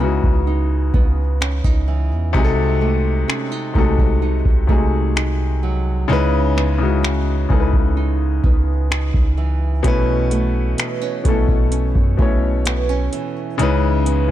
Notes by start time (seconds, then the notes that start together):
Already playing: C#2 C#3 D#4 E4 B4
0.00 C#3 G#3 B3 D#4 E4 F#4
0.24 C#2, kick
0.47 D#4
0.94 C#2 B3, kick
1.41 C#4, finger snap
1.64 C#2 D#4, kick
1.88 E3
2.11 E2
2.33 C2 C3 G#3 D#4 F#4, kick
2.38 G#4
2.44 A4
2.81 A3
3.28 C#4, finger snap
3.52 D#4
3.73 C2 C3 G#3 A3 D#4 F#4, kick
3.78 A4
3.98 kick
4.22 D#4
4.45 C2, kick
4.67 C3 G#3 A3 D#4 F#4, kick
4.72 G#4
5.16 D#4, finger snap
5.63 F#3
6.08 C#2 C#3 G#3 D#4 E4
6.13 B4
6.56 B3, finger snap
6.78 C#3 G#3 D#4 E4
6.83 F#4
7.03 D#4, finger snap
7.49 C#2 C#3 G#3 B3 D#4 E4, kick
7.54 A4
7.60 B4
7.73 kick
7.97 D#4
8.44 C#2 B3, kick
8.91 D#4, finger snap
9.14 C#2, kick
9.38 E3
9.83 B1 B2 A3 C#4 E4, kick, closed hi-hat
9.88 B4
10.31 A3, closed hi-hat
10.78 B3, finger snap, closed hi-hat
11.01 C#4
11.24 B1 B2 A3 C#4 E4, kick, closed hi-hat
11.29 A4
11.48 B1, kick
11.72 C#4, closed hi-hat
11.95 F#2, kick
12.17 B1 B2 A3 C#4 E4, kick
12.22 C#5
12.66 B3, finger snap, closed hi-hat
12.89 C#4
13.13 E3, closed hi-hat
13.58 C#2 C#3 G#3 D#4 E4, closed hi-hat
13.63 B4
14.06 B3, closed hi-hat
14.28 C#3